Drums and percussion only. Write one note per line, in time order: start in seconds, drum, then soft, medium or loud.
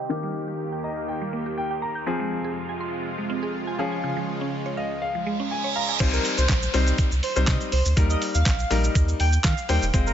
6.00 kick loud
6.00 closed hi-hat medium
6.00 crash loud
6.00 shaker medium
6.13 shaker medium
6.25 open hi-hat medium
6.25 shaker medium
6.38 shaker loud
6.38 shaker medium
6.49 kick loud
6.49 snare medium
6.49 clap loud
6.49 closed hi-hat medium
6.49 shaker medium
6.62 shaker medium
6.74 open hi-hat medium
6.74 shaker medium
6.87 shaker medium
6.98 kick loud
6.98 closed hi-hat medium
6.98 shaker medium
7.12 shaker medium
7.23 open hi-hat medium
7.23 shaker medium
7.36 shaker medium
7.47 kick loud
7.47 snare medium
7.47 clap loud
7.47 closed hi-hat medium
7.47 shaker medium
7.61 shaker medium
7.72 open hi-hat medium
7.72 shaker medium
7.85 shaker medium
7.97 kick loud
7.97 closed hi-hat medium
7.97 shaker medium
8.10 shaker medium
8.22 open hi-hat medium
8.22 shaker medium
8.35 shaker medium
8.46 kick loud
8.46 snare medium
8.46 clap loud
8.46 closed hi-hat medium
8.46 shaker medium
8.59 shaker medium
8.71 open hi-hat medium
8.71 shaker medium
8.84 shaker medium
8.95 kick loud
8.95 closed hi-hat medium
8.95 shaker medium
9.09 shaker medium
9.20 open hi-hat medium
9.20 shaker medium
9.33 shaker medium
9.44 kick loud
9.44 snare medium
9.44 clap loud
9.44 closed hi-hat medium
9.44 shaker medium
9.58 shaker medium
9.69 open hi-hat medium
9.69 shaker medium
9.82 shaker medium
9.94 kick loud
9.94 closed hi-hat medium
9.94 shaker medium
10.07 shaker medium